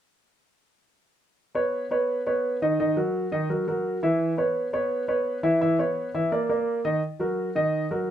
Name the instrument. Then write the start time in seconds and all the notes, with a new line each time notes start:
grand piano
1.55 B3 B4 C#5
1.91 B3 B4 C#5
2.26 B3 B4 C#5
2.62 D#3 D#4 D#5
2.80 D#3 D#4 D#5
2.97 F#3 F#4 A#4
3.32 D#3 D#4 D#5
3.49 F#3 F#4 A#4
3.67 F#3 F#4 A#4
4.03 E3 E4 E5
4.37 B3 B4 C#5
4.73 B3 B4 C#5
5.08 B3 B4 C#5
5.43 E3 E4 E5
5.61 E3 E4 E5
5.79 B3 B4 C#5
6.15 E3 E4 E5
6.32 A#3 A#4 D5
6.49 A#3 A#4 D5
6.85 D#3 D#4 D#5
7.20 F#3 F#4 A#4
7.55 D#3 D#4 D#5
7.91 F#3 F#4 A#4